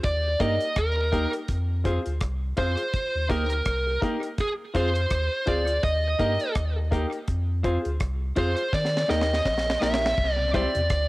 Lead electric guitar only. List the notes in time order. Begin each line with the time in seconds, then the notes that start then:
0.04 D5
0.41 D#5
0.78 A#4
2.58 C5
3.31 A#4
4.41 G#4
4.77 C5
5.48 D5
5.84 D#5
8.39 C5
8.74 D5
9.10 D#5
9.83 E5
10.33 D5
10.56 D5